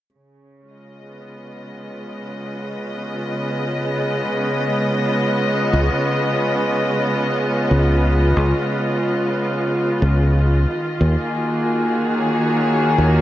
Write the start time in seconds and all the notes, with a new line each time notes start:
0.13 C#3
0.60 G#3
0.66 F4
0.70 D#5
1.00 B3
5.73 C#2
7.71 C#2
8.37 C#2
10.02 C#2
10.69 D#3
11.01 D#2 G#4
11.09 A#3
11.35 F#4
12.18 C#5
12.98 D#2